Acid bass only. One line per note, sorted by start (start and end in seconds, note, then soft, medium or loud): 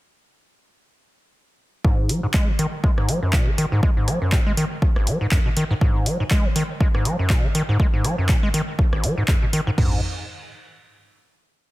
1.85 2.11 G#2 medium
2.09 2.21 F#3 medium
2.23 2.27 G#2 medium
2.34 2.50 G#3 loud
2.48 2.52 D#3 medium
2.59 2.67 D#3 loud
2.84 2.91 G#3 medium
2.98 3.10 G#2 medium
3.09 3.20 F#3 medium
3.23 3.35 F#2 medium
3.33 3.49 B2 medium
3.47 3.51 D#3 medium
3.58 3.66 D#3 loud
3.72 3.81 G#2 medium
3.83 3.91 G#3 medium
3.97 4.09 G#2 medium
4.08 4.19 F#3 medium
4.22 4.34 F#2 medium
4.33 4.40 B2 medium
4.46 4.52 G#3 loud
4.57 4.65 D#3 medium
4.96 5.08 G#1 loud
5.07 5.18 F#3 medium
5.21 5.27 G#2 medium
5.32 5.39 F#2 medium
5.46 5.49 B2 medium
5.57 5.64 D#3 loud
5.71 5.74 G#2 loud
5.81 6.08 G#2 medium
6.06 6.18 F#3 medium
6.20 6.24 G#2 medium
6.31 6.46 G#3 loud
6.45 6.48 D#3 medium
6.56 6.63 D#3 loud
6.81 6.88 G#3 medium
6.94 7.07 G#2 medium
7.05 7.17 F#3 medium
7.19 7.32 F#2 medium
7.30 7.46 B2 medium
7.44 7.48 D#3 medium
7.55 7.63 D#3 loud
7.69 7.78 G#2 loud
7.80 7.87 G#3 medium
7.94 8.06 G#2 medium
8.04 8.16 F#3 medium
8.18 8.31 F#2 medium
8.29 8.37 B2 medium
8.43 8.49 G#3 loud
8.54 8.62 D#3 loud
8.93 9.05 G#1 loud
9.04 9.15 F#3 medium
9.18 9.24 G#2 medium
9.28 9.36 F#2 medium
9.42 9.46 B2 medium
9.53 9.61 D#3 loud
9.67 9.71 G#2 loud
9.78 10.01 G#2 loud